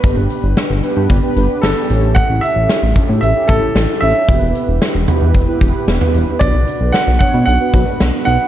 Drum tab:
HH |x-x-x-x-x-x-x-x-|x-x-x-x-x-x-x-x-|x-x-x-x-x-x-x-x-|x-x-x-x-x-x-x-x-|
SD |----o-------o---|----o-------o---|----o-------o---|----o-------o---|
T2 |----------------|----------------|------o------o--|----------------|
BD |o-------o-------|o-----o---o-----|o-------o-o-----|o-----o---o-----|